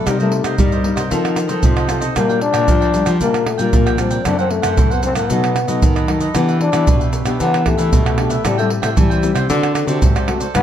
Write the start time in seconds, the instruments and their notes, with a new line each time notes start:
0.06 nylon-string guitar C3 G3 A#3 D#4, trombone G3, cavaquinho D#4 A#4 C5 D#5, pandeiro, tamborim, maracas, surdo
0.19 nylon-string guitar G3 A#3 D#4, trombone A3, cavaquinho A#4 C5 D#5, pandeiro, maracas
0.32 muted cavaquinho stroke, pandeiro
0.44 nylon-string guitar C3, trombone A3, cavaquinho A#4 C5 D#5, pandeiro, tamborim, maracas
0.58 nylon-string guitar G2 G3 A#3 D#4, trombone G3, cavaquinho D#4 A#4 C5 D#5, pandeiro, maracas, surdo
0.72 cavaquinho A#4 C5 D#5, pandeiro, maracas
0.84 nylon-string guitar G3 A#3 D#4, pandeiro
0.96 nylon-string guitar C3, cavaquinho A#4 C5 D#5, pandeiro, tamborim, maracas
1.09 tenor saxophone D#3, nylon-string guitar F3 C4 D#4 A4, cavaquinho F4 A4 C5, pandeiro, maracas, surdo
1.25 pandeiro, tamborim, maracas
1.36 muted cavaquinho stroke, pandeiro, tamborim, maracas
1.47 nylon-string guitar F3 C4 D#4 A4, cavaquinho A4 C5 D#5, pandeiro, maracas
1.63 nylon-string guitar C3, tenor saxophone F3, pandeiro, maracas, surdo
1.76 cavaquinho A4 C5 D#5, pandeiro, tamborim, maracas
1.88 nylon-string guitar C4 D#4 A4, cavaquinho F4 A4 C5 D#5, pandeiro, tamborim, maracas
2.01 cavaquinho A4 C5 D#5, pandeiro, maracas
2.15 nylon-string guitar A#2 G3 D4 F4, trombone A#3, cavaquinho D4 A#4 D5 G5, pandeiro, tamborim, maracas, surdo
2.29 nylon-string guitar G3 D4 F4, cavaquinho A#4 D5 G5, pandeiro, maracas
2.41 trombone D4, muted cavaquinho stroke, pandeiro
2.52 nylon-string guitar A#2, cavaquinho A#4 D5 G5, pandeiro, tamborim, maracas
2.67 nylon-string guitar F3 G3 D4 F4, cavaquinho D4 A#4 D5 G5, pandeiro, maracas, surdo
2.81 cavaquinho A#4 D5 G5, pandeiro, maracas
2.94 nylon-string guitar G3 D4 F4, pandeiro, maracas
3.05 nylon-string guitar F3, cavaquinho A#4 D5 G5, pandeiro, tamborim, maracas
3.20 nylon-string guitar A#2 G3 D4 F4, trombone A#3, cavaquinho D4 A#4 D5 G5, pandeiro, maracas, surdo
3.34 pandeiro, tamborim, maracas
3.46 trombone A3, muted cavaquinho stroke, pandeiro, tamborim
3.58 nylon-string guitar A#2 G3 D4 F4, trombone A#3, cavaquinho A#4 D5 G5, pandeiro, maracas
3.73 nylon-string guitar A#2 F3, pandeiro, maracas, surdo
3.86 cavaquinho A#4 D5 G5, pandeiro, tamborim, maracas
3.98 nylon-string guitar G3 D4 F4, trombone C4, cavaquinho D4 A#4 D5 G5, pandeiro, tamborim, maracas
4.11 cavaquinho A#4 D5 G5, pandeiro, maracas
4.25 nylon-string guitar F#2 E3 A3 C4, trombone D4, cavaquinho E4 A4 C5 F#5, pandeiro, tamborim, maracas, surdo
4.39 nylon-string guitar E3 A3 C4, trombone C4, cavaquinho A4 C5 F#5, pandeiro, maracas
4.50 trombone A3, muted cavaquinho stroke, pandeiro
4.62 nylon-string guitar F#2, cavaquinho A4 C5 F#5, pandeiro, tamborim, maracas
4.77 nylon-string guitar F#2 C3 E3 A3 C4, cavaquinho E4 A4 C5 F#5, pandeiro, maracas, surdo
4.90 trombone B3, cavaquinho A4 C5 F#5, pandeiro, maracas
5.03 nylon-string guitar E3 A3 C4, trombone C4, pandeiro, maracas
5.15 nylon-string guitar A2, trombone B3, cavaquinho A4 C5 F#5, pandeiro, tamborim, maracas
5.30 nylon-string guitar B2 F#3 A3 D#4, cavaquinho D#4 A4 B4 D#5, pandeiro, maracas, surdo
5.44 pandeiro, tamborim, maracas
5.56 muted cavaquinho stroke, pandeiro, tamborim, maracas
5.68 nylon-string guitar B2 F#3 A3 D#4, cavaquinho A4 B4 D#5, pandeiro, maracas
5.82 nylon-string guitar F#2 D#3, pandeiro, maracas, surdo
5.96 cavaquinho A4 B4 D#5, pandeiro, tamborim, maracas
6.08 nylon-string guitar F#3 A3 D#4, cavaquinho D#4 A4 B4 D#5, pandeiro, tamborim
6.20 cavaquinho A4 B4 D#5, pandeiro, maracas
6.35 nylon-string guitar E3 B3 D4 G4, trombone B3, cavaquinho D4 G4 B4 E5, pandeiro, tamborim, maracas, surdo
6.48 cavaquinho G4 B4 E5, pandeiro, maracas
6.60 trombone D4, muted cavaquinho stroke, pandeiro
6.72 nylon-string guitar E3 B3 D4 G4, cavaquinho G4 B4 E5, pandeiro, tamborim, maracas
6.87 nylon-string guitar B2, cavaquinho D4 G4 B4 E5, pandeiro, maracas, surdo
7.00 cavaquinho G4 B4 E5, pandeiro, maracas
7.13 pandeiro, maracas
7.25 nylon-string guitar B2 B3 D4 G4, cavaquinho G4 B4 E5, pandeiro, tamborim, maracas
7.39 nylon-string guitar E3, trombone B3, cavaquinho D4 G4 B4 E5, pandeiro, maracas, surdo
7.54 pandeiro, tamborim, maracas
7.65 trombone A3, nylon-string guitar B3 D4 G4, muted cavaquinho stroke, pandeiro, tamborim, surdo
7.77 nylon-string guitar E3, cavaquinho G4 B4 E5, pandeiro, maracas
7.93 nylon-string guitar B2, pandeiro, maracas, surdo
8.05 cavaquinho G4 B4 E5, pandeiro, tamborim, maracas
8.17 nylon-string guitar B3 D4 G4, cavaquinho D4 G4 B4 E5, pandeiro, tamborim
8.30 cavaquinho G4 B4 E5, pandeiro, maracas
8.45 nylon-string guitar A2 G3 C4 E4, trombone G3, cavaquinho A4 C5 E5 G5, pandeiro, tamborim, maracas, surdo
8.58 nylon-string guitar G3 C4 E4, trombone A3, cavaquinho C5 E5 G5, pandeiro, maracas
8.70 muted cavaquinho stroke, pandeiro
8.82 nylon-string guitar A2, trombone A3, cavaquinho C5 E5 G5, pandeiro, tamborim, maracas
8.96 nylon-string guitar E3 G3 C4 E4, trombone G3, cavaquinho A4 C5 E5 G5, pandeiro, maracas, surdo
9.10 cavaquinho C5 E5 G5, pandeiro, maracas
9.23 nylon-string guitar G3 C4 E4, pandeiro, maracas
9.35 nylon-string guitar C3, cavaquinho C5 E5 G5, pandeiro, tamborim, maracas
9.49 tenor saxophone D3, nylon-string guitar D3 A3 C4 F#4, cavaquinho F#4 A4 C5 D5, pandeiro, maracas, surdo
9.63 pandeiro, tamborim, maracas
9.74 tenor saxophone D3, muted cavaquinho stroke, pandeiro, tamborim, maracas
9.87 tenor saxophone C3, nylon-string guitar D3 A3 C4 F#4, cavaquinho A4 C5 D5, pandeiro, maracas
10.02 nylon-string guitar G#2, pandeiro, maracas, surdo
10.16 cavaquinho A4 C5 D5, pandeiro, tamborim, maracas
10.27 nylon-string guitar A3 C4 F#4, cavaquinho F#4 A4 C5 D5, pandeiro, tamborim
10.40 cavaquinho A4 C5 D5, pandeiro, maracas
10.54 nylon-string guitar G2 F#3 B3 D4, trombone B3, cavaquinho D4 G4 B4 F#5, pandeiro, tamborim, maracas, surdo